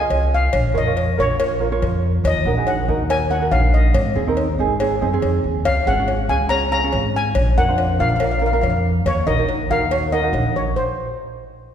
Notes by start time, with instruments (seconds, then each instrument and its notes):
Already playing: steel pan G#5
0.01 ukulele F4 G#4 D#5
0.10 upright bass C2, cowbell
0.34 steel pan F5
0.53 upright bass A#1, cowbell
0.74 upright bass F2, ukulele F4 A#4 C#5, steel pan D#5
0.86 ukulele F4 A#4 C#5
0.97 cowbell
1.18 upright bass A#1, ukulele F4 A#4 C#5, steel pan C#5
1.40 ukulele F4 A#4 C#5, cowbell
1.60 ukulele F4 A#4 C#5
1.72 ukulele F4 A#4 C#5
1.82 upright bass F2, cowbell
2.24 upright bass D#2, steel pan D#5, cowbell
2.45 upright bass A#1, ukulele D#4 F#4 A#4
2.57 ukulele D#4 F#4 G#4
2.67 steel pan F#5, cowbell
2.88 upright bass D#2, ukulele D#4 F#4 A#4
3.10 ukulele D#4 F#4 A#4, steel pan G#5, cowbell
3.30 ukulele D#4 F#4 A#4, steel pan F#5
3.41 ukulele D#4 F#4 A#4
3.51 upright bass A#1, steel pan F5, cowbell
3.74 steel pan D#5
3.94 upright bass G#1, cowbell
4.15 upright bass D#2, ukulele C4 D#4 G#4
4.27 ukulele C4 D#4 A#4
4.37 cowbell
4.59 upright bass G#1, ukulele C4 D#4 G#4
4.80 ukulele C4 D#4 G#4, cowbell
5.01 upright bass F#2, ukulele C4 D#4 G#4
5.13 ukulele C4 D#4 G#4
5.22 upright bass F2, cowbell
5.44 upright bass D#2
5.65 upright bass C#2, steel pan F5, cowbell
5.86 upright bass G#1, ukulele C#4 F4 G#4, steel pan F#5
5.99 ukulele C#4 F4 G#4
6.08 cowbell
6.29 upright bass C#2, ukulele C#4 F4 G#4, steel pan G#5
6.49 ukulele C#4 F4 G#4, steel pan A#5, cowbell
6.72 ukulele C#4 F4 G#4, steel pan A#5
6.84 ukulele C#4 F4 G#4
6.92 upright bass G#1, cowbell
7.16 steel pan G#5
7.35 upright bass A#1, cowbell
7.57 upright bass F2, ukulele D4 F4 A#4, steel pan F#5
7.69 ukulele D4 F4 C5
7.78 cowbell
7.99 upright bass A#1, ukulele D4 F4 A#4, steel pan F5
8.09 steel pan F5
8.16 ukulele D4, steel pan F5, cowbell
8.20 ukulele F4 A#4, steel pan F5
8.31 steel pan F5
8.39 ukulele D4 F4 A#4, steel pan F5
8.46 steel pan F5
8.53 ukulele D4 F4 A#4, steel pan F5
8.61 upright bass F2, steel pan F5, cowbell
8.70 steel pan F5
9.06 upright bass D#2, steel pan C#5, cowbell
9.27 upright bass A#1, ukulele D#4 F#4 A#4, steel pan D#5
9.39 ukulele D#4 F#4 A#4
9.49 cowbell
9.70 upright bass D#2, ukulele D#4 F#4 A#4, steel pan F5
9.91 ukulele D#4 F#4 C#5, cowbell
10.12 ukulele D#4 F#4 A#4, steel pan D#5
10.23 ukulele D#4 F#4 A#4
10.33 upright bass A#1, cowbell
10.56 steel pan C#5
10.76 steel pan C5